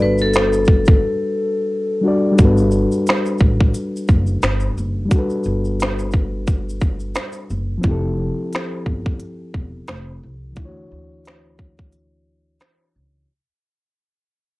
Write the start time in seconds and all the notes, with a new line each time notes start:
Already playing: G3 D4 F#4 A4 B4
0.00 G1 B4
0.18 A4, shaker
0.34 finger snap, snare, closed hi-hat, shaker
0.53 shaker
0.65 kick, shaker
0.85 kick, shaker
2.01 G3 D4 F#4
2.06 A4 D5
2.32 G3 D4
2.38 G1 F#4 A4, kick, closed hi-hat, shaker
2.45 B4
2.57 shaker
2.71 shaker
2.92 shaker
3.07 finger snap, snare, closed hi-hat, shaker
3.26 shaker
3.38 A1, kick, shaker
3.61 kick
3.75 closed hi-hat, shaker
3.97 shaker
4.08 F#1, kick, shaker
4.27 shaker
4.42 G1, finger snap, snare, closed hi-hat, shaker
4.60 shaker
4.77 F#1, shaker
5.05 G3 D4
5.11 F#4, kick, closed hi-hat, shaker
5.16 A4 B4
5.30 shaker
5.44 G1, shaker
5.65 shaker
5.80 finger snap, snare, closed hi-hat, shaker
5.99 shaker
6.11 kick, shaker
6.47 kick, closed hi-hat, shaker
6.69 shaker
6.81 kick, shaker
7.00 shaker
7.15 finger snap, snare, closed hi-hat, shaker
7.32 shaker
7.50 F#1, shaker
7.78 F3 C4
7.83 F1 E4, kick, closed hi-hat
7.88 G4 A4
8.53 finger snap, snare, closed hi-hat
8.86 G1, kick
9.06 kick
9.20 closed hi-hat
9.54 E1, kick
9.88 F1, finger snap, snare, closed hi-hat
10.23 C2
10.52 E3 D4, closed hi-hat
10.57 D2 E4, kick
10.62 F4 C#5
10.69 F#4
10.92 D2
11.25 finger snap, snare, closed hi-hat
11.59 kick
11.79 kick
11.92 closed hi-hat
12.60 finger snap, snare, closed hi-hat
12.96 C#2